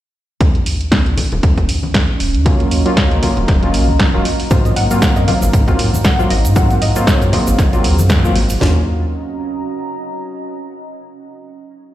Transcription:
0.41 D#2 C#4, kick, closed hi-hat, high conga
0.55 closed hi-hat
0.66 D#2, open hi-hat
0.81 closed hi-hat
0.92 kick, snare, closed hi-hat
1.02 F#3
1.06 C#2, closed hi-hat
1.17 open hi-hat, high conga, low conga
1.32 D#1, closed hi-hat, low conga
1.43 D#2, kick, closed hi-hat
1.58 D#1, kick, closed hi-hat
1.69 D#2 D#5 A#5, open hi-hat
1.83 high conga
1.94 kick, snare, closed hi-hat
2.20 D#1, open hi-hat
2.34 D#2, closed hi-hat
2.45 F#3 A#3 C#4 F4, kick, closed hi-hat, high conga
2.60 closed hi-hat
2.71 D#2, open hi-hat
2.85 F#3 A#3 C#4 F4, closed hi-hat
2.97 kick, snare, closed hi-hat
3.11 C#2, closed hi-hat
3.22 F#3 A#3 C#4 F4, open hi-hat, high conga, low conga
3.36 D#1, closed hi-hat, low conga
3.48 D#1, kick, snare, closed hi-hat
3.62 F#3 A#3 C#4 F4, closed hi-hat
3.74 A#1, open hi-hat
3.88 C#2, high conga
3.99 kick, snare, closed hi-hat
4.14 D#1 F#3 A#3 C#4 F4
4.25 C4, open hi-hat
4.40 open hi-hat
4.51 G#2 F#3 A#3 C4 D#4 F4 C5, kick, closed hi-hat, high conga, shaker
4.65 D#5, closed hi-hat, shaker
4.76 G#2 F#5, open hi-hat
4.91 F#3 A#3 C4 F4, closed hi-hat, shaker
5.02 kick, snare, closed hi-hat, shaker
5.16 F#2 D#5, closed hi-hat, shaker
5.27 F#3 A#3 C4 F4 F5, open hi-hat, high conga, low conga
5.42 G#1, closed hi-hat, low conga, shaker
5.51 G#2 F5, kick, closed hi-hat, shaker
5.67 G#1 F#3 A#3 C4 F4, kick, closed hi-hat, shaker
5.79 G#2, open hi-hat
5.94 high conga, shaker
6.04 F#5, kick, snare, closed hi-hat, shaker
6.19 F#3 A#3 C4 F4 F5, shaker
6.30 G#1 D#5, open hi-hat
6.45 G#2, closed hi-hat, shaker
6.55 F#3 A#3 C4 F4 G#4 F#5, kick, closed hi-hat, high conga, shaker
6.70 closed hi-hat, shaker
6.82 G#2 D#5, open hi-hat
6.96 F#3 A#3 C4 F4, closed hi-hat, shaker
7.07 C#5, kick, snare, closed hi-hat, shaker
7.22 F#2, closed hi-hat, shaker
7.33 F#3 A#3 C4 F4 D#5, open hi-hat, high conga, low conga
7.47 G#1, closed hi-hat, low conga, shaker
7.58 G#1, kick, snare, closed hi-hat, shaker
7.73 F#3 A#3 C4 F4, closed hi-hat, shaker
7.84 D#2, open hi-hat
7.99 F#2, high conga, shaker
8.09 kick, snare, closed hi-hat, shaker
8.24 G#1 F#3 A#3 C4 F4, shaker
8.36 open hi-hat
8.50 open hi-hat, shaker
8.60 D#2 F#3 A#3 C#4 F4, snare, floor tom
8.70 F#4
8.78 D#5
8.85 A#5

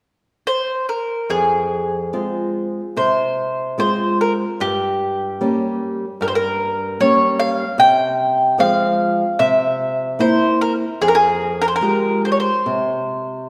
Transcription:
0.47 C5
0.89 A#4
1.30 F2 G#4
2.13 G#3 C4 F4
2.97 C3 C5
3.78 G#3 C4 F4 C5
4.21 A#4
4.60 G2 G4
5.41 G3 A#3 C#4
6.21 G2 A#4
6.28 C5
6.35 A#4
7.00 G3 A#3 C#4 C#5
7.40 F5
7.78 C3 G5
8.58 F3 G#3 C4 F5
9.39 C3 E5
10.19 A#3 C4 E4 C5
10.61 A#4
11.01 F2 G#4
11.08 A#4
11.15 G#4
11.62 A#4
11.68 C5
11.76 A#4
11.81 G#3 F4 G4
12.25 C5
12.32 C#5
12.40 C5
12.66 C3

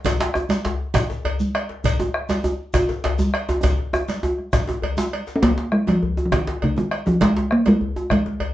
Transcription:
0.05 bombo low, cowbell, djembe slap, low conga, djembe bass, shekere
0.19 djembe slap, high conga
0.34 bombo rim, djembe tone
0.49 cowbell, djembe slap, high conga, shekere
0.64 djembe slap, high conga, djembe bass, shekere
0.94 bombo rim, bombo low, cowbell, djembe slap, high conga, low conga, shekere
1.10 bombo rim, djembe slap, djembe tone, shekere
1.25 cowbell, djembe bass
1.40 high conga, shekere
1.55 bombo rim, cowbell, djembe slap
1.69 djembe slap
1.84 bombo low, cowbell, djembe bass, low conga, shekere
1.99 djembe tone, high conga
2.14 bombo rim
2.29 cowbell, djembe slap, high conga, shekere
2.43 high conga, djembe tone, shekere
2.74 bombo rim, bombo low, cowbell, djembe tone, high conga, low conga, shekere
2.88 bombo rim, djembe slap, djembe tone, shekere
3.04 cowbell, djembe slap, djembe bass
3.19 high conga, djembe tone, shekere
3.34 bombo rim, cowbell, djembe slap
3.49 djembe slap, djembe tone
3.63 bombo low, cowbell, djembe slap, djembe tone, low conga, djembe bass, shekere
3.78 djembe tone
3.93 bombo rim, djembe tone
4.08 cowbell, djembe slap, high conga, shekere
4.23 bombo rim, djembe tone, high conga
4.38 bombo rim, high conga
4.53 bombo rim, bombo low, cowbell, djembe tone, high conga, low conga, shekere
4.67 bombo rim, djembe slap, djembe tone, high conga
4.82 cowbell, high conga, djembe bass
4.97 djembe slap, high conga, shekere
5.13 cowbell, high conga
5.27 djembe slap, shekere
5.36 C#4
5.42 A#3, bombo low, cowbell, djembe slap, high conga, djembe bass, low conga
5.58 djembe slap, djembe tone
5.72 G#3, bombo rim
5.87 F3, bombo rim, cowbell, djembe slap, high conga, djembe tone
6.03 high conga, djembe bass
6.17 djembe tone
6.26 F3
6.32 D#3, bombo rim, bombo low, cowbell, djembe slap, high conga, low conga
6.47 bombo rim, djembe slap, high conga, djembe tone
6.62 C#3, cowbell, djembe bass
6.76 D#3, djembe slap, high conga, djembe tone
6.91 bombo rim, cowbell, djembe slap
7.06 F3, djembe slap, high conga, djembe tone
7.21 G#3, bombo low, cowbell, djembe slap, high conga, djembe bass, low conga
7.35 djembe slap, djembe tone
7.51 A#3, bombo rim
7.66 G#3, bombo rim, cowbell, djembe slap, high conga, djembe tone
7.81 high conga, djembe bass
7.96 djembe tone
8.10 G#3, bombo rim, bombo low, cowbell, high conga, low conga
8.26 bombo rim, djembe slap, high conga, djembe tone
8.40 cowbell, djembe bass

